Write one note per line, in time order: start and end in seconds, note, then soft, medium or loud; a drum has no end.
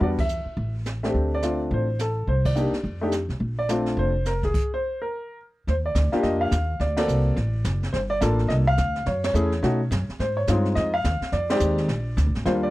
0.00 0.43 E2 medium
0.00 0.16 G3 medium
0.00 0.17 B3 soft
0.00 0.17 D4 medium
0.00 0.17 F#4 medium
0.00 0.08 D5 medium
0.00 brush sweep soft
0.00 kick soft
0.18 0.72 E5 medium
0.18 kick medium
0.18 ride medium
0.29 hi-hat pedal medium
0.45 muted upright bass stroke soft
0.57 1.11 A1 medium
0.57 brush sweep soft
0.57 kick soft
0.85 snare soft
0.85 hi-hat pedal soft
1.03 1.40 A3 medium
1.03 1.40 C4 medium
1.03 1.41 D4 medium
1.03 1.41 G4 medium
1.03 snare soft
1.14 1.68 D2 medium
1.14 brush sweep soft
1.14 kick soft
1.35 1.60 D5 medium
1.42 1.85 A3 soft
1.42 1.85 C4 soft
1.42 1.85 D4 soft
1.42 1.86 F4 medium
1.42 snare soft
1.42 hi-hat pedal soft
1.70 2.25 A1 medium
1.70 1.99 C5 medium
1.70 brush sweep soft
1.70 kick soft
1.99 2.29 A4 medium
1.99 snare medium
1.99 hi-hat pedal medium
2.27 2.70 C2 medium
2.27 2.46 C5 medium
2.27 brush sweep soft
2.27 kick soft
2.45 2.98 D5 medium
2.45 kick medium
2.45 ride medium
2.55 2.71 A#3 medium
2.55 2.72 D4 soft
2.55 2.72 D#4 medium
2.55 2.72 G4 medium
2.55 hi-hat pedal medium
2.73 muted upright bass stroke soft
2.73 snare soft
2.84 3.26 F2 medium
2.84 brush sweep soft
2.84 kick soft
3.01 3.11 A3 medium
3.01 3.12 D4 medium
3.01 3.12 D#4 medium
3.01 3.12 G4 medium
3.12 snare soft
3.12 hi-hat pedal medium
3.29 3.39 B1 medium
3.29 snare soft
3.40 3.94 A#1 medium
3.40 brush sweep soft
3.40 kick soft
3.59 3.95 D5 medium
3.69 4.11 A3 medium
3.69 4.12 C4 medium
3.69 4.12 D4 medium
3.69 4.12 F4 medium
3.69 snare medium
3.69 hi-hat pedal medium
3.86 snare soft
3.97 4.51 F1 medium
3.97 4.27 C5 medium
3.97 brush sweep soft
3.97 kick soft
4.25 4.42 A#4 medium
4.25 snare soft
4.25 hi-hat pedal soft
4.43 4.70 G#4 medium
4.43 kick soft
4.43 snare soft
4.54 kick medium
4.54 crash medium
4.74 4.99 C5 medium
5.02 5.37 A#4 medium
5.67 5.94 D#2 medium
5.67 5.74 C5 medium
5.67 brush sweep soft
5.67 kick soft
5.67 snare soft
5.86 6.12 D5 medium
5.95 6.12 D2 medium
5.95 kick soft
5.95 snare medium
5.95 hi-hat pedal medium
6.12 6.50 A#3 medium
6.12 6.50 D4 medium
6.12 6.50 F4 medium
6.12 6.50 G4 medium
6.12 snare soft
6.23 6.51 F2 medium
6.23 6.40 D#5 medium
6.23 brush sweep soft
6.23 kick soft
6.23 snare soft
6.41 6.81 F5 medium
6.51 6.79 D#2 medium
6.51 kick soft
6.51 snare medium
6.51 hi-hat pedal medium
6.80 7.07 D2 medium
6.80 6.96 D5 medium
6.80 brush sweep medium
6.80 kick soft
6.80 snare soft
6.97 7.34 A#3 medium
6.97 7.34 C4 medium
6.97 7.35 F#4 medium
6.97 7.35 A4 medium
6.97 7.79 D5 medium
6.97 snare medium
6.97 ride medium
7.08 7.36 C2 medium
7.08 hi-hat pedal medium
7.36 7.64 A1 medium
7.36 brush sweep medium
7.36 kick soft
7.36 snare soft
7.64 7.92 F#1 medium
7.64 kick soft
7.64 snare medium
7.64 hi-hat pedal medium
7.83 snare soft
7.93 8.21 G1 medium
7.93 7.98 C5 medium
7.93 brush sweep medium
7.93 kick soft
7.93 snare soft
8.10 8.37 D5 loud
8.21 8.49 A1 loud
8.21 8.64 A#3 medium
8.21 8.64 D4 medium
8.21 8.64 F4 medium
8.21 8.64 A4 medium
8.21 kick soft
8.21 snare medium
8.21 hi-hat pedal medium
8.39 snare soft
8.48 8.77 C2 medium
8.48 8.53 D#5 medium
8.48 brush sweep soft
8.48 kick soft
8.48 snare soft
8.67 9.08 F5 loud
8.77 9.05 D2 medium
8.77 kick soft
8.77 snare medium
8.77 hi-hat pedal medium
8.95 snare soft
9.06 9.33 F#2 medium
9.06 9.23 C#5 medium
9.06 brush sweep medium
9.06 kick soft
9.06 snare soft
9.24 10.05 C#5 medium
9.24 snare medium
9.24 ride medium
9.34 9.62 E2 medium
9.34 9.50 A3 medium
9.34 9.50 C#4 medium
9.34 9.51 E4 medium
9.34 9.51 G#4 medium
9.34 hi-hat pedal medium
9.52 snare soft
9.63 9.90 B2 medium
9.63 9.79 A3 medium
9.63 9.79 C#4 medium
9.63 9.79 D#4 medium
9.63 9.79 F#4 medium
9.63 brush sweep soft
9.63 kick soft
9.63 snare soft
9.91 10.07 F#2 medium
9.91 kick soft
9.91 snare medium
9.91 hi-hat pedal medium
10.09 muted upright bass stroke soft
10.09 snare soft
10.19 10.47 G#2 medium
10.19 10.38 C5 medium
10.19 brush sweep medium
10.19 kick soft
10.19 snare soft
10.37 10.63 C#5 medium
10.47 10.75 G2 medium
10.47 10.90 G#3 medium
10.47 10.91 C4 medium
10.47 10.91 D#4 medium
10.47 10.91 F4 medium
10.47 kick soft
10.47 snare medium
10.47 hi-hat pedal medium
10.65 snare soft
10.75 11.04 F2 medium
10.75 10.94 D#5 medium
10.75 brush sweep soft
10.75 kick soft
10.75 snare soft
10.94 11.30 F5 medium
11.04 11.20 D#2 medium
11.04 kick soft
11.04 snare medium
11.04 hi-hat pedal medium
11.21 muted upright bass stroke soft
11.21 snare soft
11.32 11.60 F2 medium
11.32 11.49 D5 medium
11.32 brush sweep soft
11.32 kick soft
11.32 snare soft
11.50 11.87 G#3 medium
11.50 11.87 C4 medium
11.50 11.87 D#4 medium
11.50 11.88 G4 medium
11.50 12.31 D5 loud
11.50 snare medium
11.50 ride medium
11.60 11.88 D#2 medium
11.60 hi-hat pedal medium
11.78 snare soft
11.88 12.16 A#1 medium
11.88 brush sweep soft
11.88 kick soft
11.88 snare soft
12.17 12.28 D2 medium
12.17 kick soft
12.17 snare medium
12.17 hi-hat pedal medium
12.27 12.35 A#1 medium
12.35 12.45 G#1 medium
12.35 snare soft
12.45 12.70 D#2 medium
12.45 12.70 G3 medium
12.45 12.70 A#3 medium
12.45 12.70 D4 medium
12.45 12.70 F4 medium
12.45 12.51 C5 medium
12.45 brush sweep medium
12.45 kick soft
12.45 snare soft
12.63 12.70 D5 medium